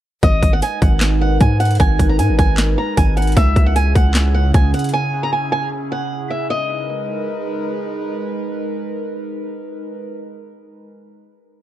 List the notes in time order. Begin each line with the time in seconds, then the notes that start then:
0.23 G#1 G#3 D#4 A#4 B4 D#5, kick, closed hi-hat
0.43 G#1, kick, closed hi-hat
0.53 F#5
0.62 G#5, closed hi-hat
0.82 G#1 F#5, kick, closed hi-hat
1.01 snare, clap, closed hi-hat
1.21 F#5
1.41 G#2 G#5, kick, closed hi-hat
1.60 F#5, closed hi-hat
1.65 closed hi-hat
1.71 closed hi-hat
1.75 closed hi-hat
1.80 G#1 G#5, kick, closed hi-hat
1.99 G#1, kick, closed hi-hat
2.09 A#5
2.19 G#2 G#5, closed hi-hat
2.29 G#1
2.39 G#1 G#5, kick, closed hi-hat
2.58 snare, clap, closed hi-hat
2.78 A#5
2.97 G#1 G#5, kick, closed hi-hat
3.17 F#5, closed hi-hat
3.22 closed hi-hat
3.27 closed hi-hat
3.32 closed hi-hat
3.36 C#2 C#3 C#4 E4 G#4 E5, kick, closed hi-hat
3.56 C#2, kick, closed hi-hat
3.66 F#5
3.76 G#5, closed hi-hat
3.95 C#2 F#5, kick, closed hi-hat
4.14 snare, clap, closed hi-hat
4.34 F#5
4.54 C#2 G#5, kick, closed hi-hat
4.74 F#5, closed hi-hat
4.79 closed hi-hat
4.84 closed hi-hat
4.89 closed hi-hat
4.93 G#5
5.23 A#5
5.33 G#5
5.52 G#5
5.92 F#5
6.30 E5
6.50 G#3 D#4 A#4 B4 D#5